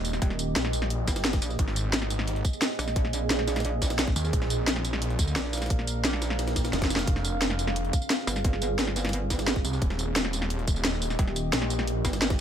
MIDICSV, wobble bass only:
0, 0, Header, 1, 2, 480
1, 0, Start_track
1, 0, Tempo, 342857
1, 305, Time_signature, 4, 2, 24, 8
1, 17367, End_track
2, 0, Start_track
2, 0, Title_t, "Wobble bass"
2, 0, Program_c, 0, 39
2, 305, Note_on_c, 0, 27, 94
2, 766, Note_off_c, 0, 27, 0
2, 1505, Note_on_c, 0, 31, 99
2, 1966, Note_off_c, 0, 31, 0
2, 1985, Note_on_c, 0, 34, 99
2, 2206, Note_off_c, 0, 34, 0
2, 3905, Note_on_c, 0, 34, 99
2, 5806, Note_off_c, 0, 34, 0
2, 7503, Note_on_c, 0, 34, 100
2, 9405, Note_off_c, 0, 34, 0
2, 11584, Note_on_c, 0, 31, 99
2, 13485, Note_off_c, 0, 31, 0
2, 15665, Note_on_c, 0, 27, 97
2, 16126, Note_off_c, 0, 27, 0
2, 16865, Note_on_c, 0, 31, 98
2, 17326, Note_off_c, 0, 31, 0
2, 17367, End_track
0, 0, End_of_file